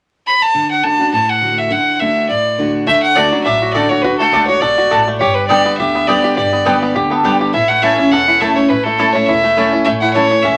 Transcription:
0.27 fiddle B5
0.42 fiddle A5
0.54 steel-string acoustic guitar D3
0.71 fiddle F#5
0.83 steel-string acoustic guitar D3 A3 D4 F#4, fiddle A5
0.99 steel-string acoustic guitar D4 F#4
1.13 steel-string acoustic guitar A2, fiddle A5
1.29 fiddle F#5
1.42 steel-string acoustic guitar D3 A3 D4 F#4
1.58 fiddle E5
1.71 steel-string acoustic guitar D3, fiddle F#5
2.00 steel-string acoustic guitar D3 A3 D4 F#4, fiddle E5
2.29 steel-string acoustic guitar A2, fiddle D5
2.58 steel-string acoustic guitar D3 A3 D4 F#4
2.87 upright bass D2, steel-string acoustic guitar D3, five-string banjo A3, fiddle E5
3.03 fiddle F#5
3.15 steel-string acoustic guitar D3 A3 D4 F#4, mandolin A3 F#4 D5 A5, five-string banjo A3, fiddle D5
3.32 five-string banjo F#3, steel-string acoustic guitar D4 F#4
3.44 upright bass A1, steel-string acoustic guitar A2, five-string banjo D4, fiddle E5
3.62 five-string banjo F#4
3.73 steel-string acoustic guitar D3 A3 D4 F#4, mandolin A3 F#4 D5 A5, five-string banjo A4, fiddle D5
3.89 five-string banjo F#4, fiddle C#5
4.02 upright bass D2, steel-string acoustic guitar D3, five-string banjo F#4, fiddle B4
4.18 five-string banjo A3, fiddle A4
4.32 upright bass C#2, steel-string acoustic guitar D3 A3 D4 F#4, mandolin A3 F#4 D5 A5, five-string banjo D4
4.47 five-string banjo F#4, fiddle C#5
4.60 upright bass B1, steel-string acoustic guitar B2, five-string banjo A4, fiddle D5
4.78 five-string banjo F#4
4.91 upright bass A1, steel-string acoustic guitar A2, mandolin A3 F#4 D5 A5, five-string banjo A4
5.08 five-string banjo A3
5.19 upright bass G1, steel-string acoustic guitar G2, five-string banjo G4, fiddle C#5
5.34 fiddle B4
5.48 steel-string acoustic guitar D3 G3 B3 G4, mandolin B3 G4 D5 G5, five-string banjo A4, fiddle D5
5.65 five-string banjo B3
5.77 upright bass D2, steel-string acoustic guitar D3, five-string banjo G4, fiddle E5
5.95 five-string banjo B3
6.07 steel-string acoustic guitar D3 G3 B3 G4, mandolin B3 G4 D5 G5, five-string banjo D4, fiddle D5
6.24 five-string banjo G4
6.36 upright bass G1, steel-string acoustic guitar G2, five-string banjo G4, fiddle D5
6.53 five-string banjo B3
6.65 steel-string acoustic guitar D3 G3 B3 G4, mandolin B3 G4 D5 G5, five-string banjo A4, resonator guitar played with a steel bar B4
6.82 five-string banjo B3
6.95 upright bass D2, steel-string acoustic guitar D3, resonator guitar played with a steel bar G4, five-string banjo G4
7.10 five-string banjo B3, resonator guitar played with a steel bar A4
7.23 steel-string acoustic guitar D3 G3 B3 G4, mandolin B3 G4 D5 G5, five-string banjo D4, resonator guitar played with a steel bar G4
7.41 five-string banjo G4
7.53 upright bass A1, steel-string acoustic guitar A2, five-string banjo E4, fiddle E5
7.68 five-string banjo A3, fiddle F#5
7.82 steel-string acoustic guitar E3 A3 C#4 E4, mandolin A3 E4 C#5 A5, five-string banjo C#4, fiddle E5
7.98 steel-string acoustic guitar C#4 E4, five-string banjo E4
8.11 upright bass E1, steel-string acoustic guitar E2, five-string banjo A4, fiddle F#5
8.28 five-string banjo E4
8.40 steel-string acoustic guitar E3 A3 C#4 E4, mandolin A3 E4 C#5 A5, five-string banjo A4, fiddle E5
8.56 five-string banjo A3, steel-string acoustic guitar C#4 E4, fiddle C#5
8.68 upright bass A1, steel-string acoustic guitar A2, five-string banjo E4, fiddle B4
8.84 five-string banjo A3, fiddle A4
8.98 steel-string acoustic guitar E3 A3 C#4 E4, mandolin A3 E4 C#5 A5, five-string banjo A4
9.13 five-string banjo A3, fiddle C#5
9.26 upright bass E1, steel-string acoustic guitar E2, five-string banjo E4, fiddle E5
9.44 five-string banjo A3
9.56 steel-string acoustic guitar E3 A3 C#4 E4, mandolin A3 E4 C#5 A5, five-string banjo C#4
9.73 five-string banjo E4
9.85 upright bass A1, steel-string acoustic guitar A2, five-string banjo A3, fiddle E5
10.01 five-string banjo E4, fiddle F#5
10.14 steel-string acoustic guitar E3 A3 C#4 E4, mandolin A3 E4 C#5 A5, five-string banjo A3, fiddle C#5
10.31 five-string banjo E3
10.43 upright bass E1, steel-string acoustic guitar E2, five-string banjo C#4, fiddle E5

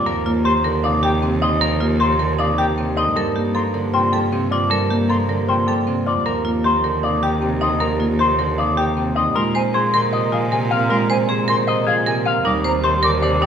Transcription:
Already playing: harp G3 A#3, marimba F4, clean electric guitar D5
0.06 cello D#2, harp F3, clean electric guitar A#4, marimba A#4
0.26 harp A#3, marimba F4
0.45 harp D#3, marimba G4, clean electric guitar C5, flute C6
0.64 harp D3, marimba A#4
0.84 harp C3, marimba D#4, clean electric guitar D5, flute F5
1.03 harp D#3, clean electric guitar G4, marimba G4, flute G5
1.22 harp C3, marimba C4
1.42 harp D3, marimba D#4, clean electric guitar D#5, flute C6
1.61 harp F3, marimba A#4, clean electric guitar A#4
1.80 harp A#3, marimba F4
2.00 harp D#3, marimba G4, clean electric guitar C5, flute C6
2.19 harp D3, marimba A#4
2.39 harp C3, marimba D#4, clean electric guitar D5, flute F5
2.58 harp D#3, marimba G4, clean electric guitar G4, flute G5
2.77 harp C3, marimba C4
2.96 harp D3, marimba D#4, clean electric guitar D#5, flute C6
3.16 cello G2, harp G3, clean electric guitar A4, marimba A#4
3.35 harp A#3, marimba G4
3.54 harp F3, marimba A4, clean electric guitar A#4, flute C6
3.74 harp D3, marimba A#4
3.93 harp C3, marimba F4, clean electric guitar C5, flute G5
4.12 harp F3, clean electric guitar G4, marimba A4, flute A5
4.32 harp C3, marimba C4
4.51 harp D3, marimba F4, clean electric guitar D5, flute C6
4.70 harp G3, clean electric guitar A4, marimba A#4
4.90 harp A#3, marimba G4
5.09 harp F3, marimba A4, clean electric guitar A#4, flute C6
5.29 harp D3, marimba A#4
5.48 harp C3, marimba F4, clean electric guitar C5, flute G5
5.67 harp F3, clean electric guitar G4, marimba A4, flute A5
5.87 harp C3, marimba C4
6.06 harp D3, marimba F4, clean electric guitar D5, flute C6
6.26 cello D#2, harp F3, marimba A#4, clean electric guitar A#4
6.45 harp A#3, marimba F4
6.64 harp D#3, marimba G4, clean electric guitar C5, flute C6
6.84 harp D3, marimba A#4
7.03 harp C3, marimba D#4, clean electric guitar D5, flute F5
7.22 harp D#3, marimba G4, clean electric guitar G4, flute G5
7.42 harp C3, marimba C4
7.61 harp D3, marimba D#4, clean electric guitar D#5, flute C6
7.80 harp F3, marimba A#4, clean electric guitar A#4
8.00 harp A#3, marimba F4
8.19 harp D#3, marimba G4, clean electric guitar C5, flute C6
8.39 harp D3, marimba A#4
8.58 harp C3, marimba D#4, clean electric guitar D5, flute F5
8.77 harp D#3, clean electric guitar G4, marimba G4, flute G5
8.97 harp C3, marimba C4
9.15 harp D3, marimba D#4, clean electric guitar D#5, flute C6
9.35 cello A#2, harp G#3, marimba F4, clean electric guitar A#4, flute C6
9.55 harp C4, marimba C5, flute G#5
9.74 harp F3, marimba G#4, clean electric guitar C5
9.93 harp D#3, marimba A#4, flute C6
10.13 harp C3, marimba C5, clean electric guitar D#5
10.32 harp F3, marimba F4, clean electric guitar G#4, flute F5
10.51 harp C3, marimba A#4, flute G#5
10.71 harp D#3, marimba C4, clean electric guitar F5
10.89 harp G#3, marimba F4, clean electric guitar A#4, flute C6
11.09 harp C4, marimba C5, flute G#5
11.29 harp F3, marimba G#4, clean electric guitar C5
11.48 harp D#3, marimba A#4, flute C6
11.67 harp C3, marimba C5, clean electric guitar D#5
11.87 harp F3, marimba F4, clean electric guitar G#4, flute F5
12.06 harp C3, marimba A#4, flute G#5
12.26 harp D#3, marimba C4, clean electric guitar F5
12.45 cello D#2, harp G3, marimba D#4, clean electric guitar A#4, flute D6
12.64 harp C4, marimba C5, flute A#5
12.84 harp D#3, marimba G4, clean electric guitar C5
13.03 harp D3, marimba A#4, flute D6
13.22 harp C3, marimba C5, clean electric guitar D5
13.42 harp D#3, marimba D#4, clean electric guitar G4, flute G5

